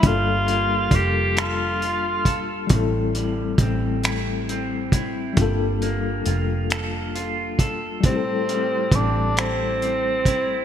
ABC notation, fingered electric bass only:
X:1
M:6/8
L:1/8
Q:3/8=45
K:Gdor
V:1 name="Fingered electric bass" clef=bass
G,,,2 F,,,4 | A,,,2 A,,,4 | G,,,2 F,,,4 | A,,,2 A,,,4 |]